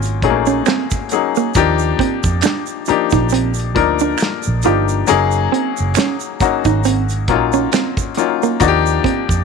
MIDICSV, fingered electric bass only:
0, 0, Header, 1, 3, 480
1, 0, Start_track
1, 0, Tempo, 882353
1, 844, Time_signature, 4, 2, 24, 8
1, 5135, End_track
2, 0, Start_track
2, 0, Title_t, "Fingered electric bass"
2, 0, Program_c, 0, 33
2, 0, Note_on_c, 0, 32, 85
2, 130, Note_off_c, 0, 32, 0
2, 130, Note_on_c, 0, 34, 90
2, 327, Note_off_c, 0, 34, 0
2, 850, Note_on_c, 0, 39, 95
2, 1047, Note_off_c, 0, 39, 0
2, 1225, Note_on_c, 0, 41, 83
2, 1310, Note_off_c, 0, 41, 0
2, 1707, Note_on_c, 0, 34, 84
2, 2050, Note_off_c, 0, 34, 0
2, 2050, Note_on_c, 0, 38, 76
2, 2247, Note_off_c, 0, 38, 0
2, 2434, Note_on_c, 0, 34, 84
2, 2516, Note_off_c, 0, 34, 0
2, 2538, Note_on_c, 0, 31, 83
2, 2732, Note_off_c, 0, 31, 0
2, 2779, Note_on_c, 0, 30, 103
2, 2972, Note_off_c, 0, 30, 0
2, 3156, Note_on_c, 0, 30, 86
2, 3237, Note_off_c, 0, 30, 0
2, 3624, Note_on_c, 0, 32, 86
2, 3966, Note_off_c, 0, 32, 0
2, 3966, Note_on_c, 0, 34, 94
2, 4165, Note_off_c, 0, 34, 0
2, 4688, Note_on_c, 0, 39, 100
2, 4886, Note_off_c, 0, 39, 0
2, 5061, Note_on_c, 0, 41, 79
2, 5135, Note_off_c, 0, 41, 0
2, 5135, End_track
3, 0, Start_track
3, 0, Title_t, "Muted fingered electric bass strokes"
3, 1576, Note_on_c, 9, 29, 47
3, 1631, Note_off_c, 9, 29, 0
3, 3491, Note_on_c, 9, 29, 47
3, 3546, Note_off_c, 9, 29, 0
3, 5135, End_track
0, 0, End_of_file